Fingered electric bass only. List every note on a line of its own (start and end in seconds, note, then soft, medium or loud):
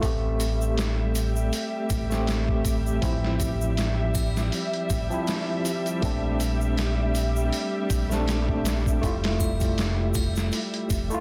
0.03 1.50 A1 medium
1.91 3.00 A1 medium
3.03 4.50 A1 medium
4.91 5.09 A1 medium
6.03 7.50 A#1 loud
7.91 9.00 A#1 medium
9.03 10.50 F1 loud
10.91 11.09 F1 medium